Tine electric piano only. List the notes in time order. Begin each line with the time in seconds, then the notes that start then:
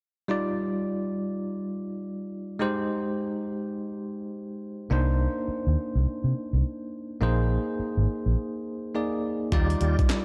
0.28 G3 D#4 F4 D5
2.59 G#3 D#4 G4 C5
4.90 A#3 D4 D#4 C5
7.21 A#3 D#4 G#4 C5
8.94 A#3 D#4 G#4 D5
9.52 G3 D#4 F4 D5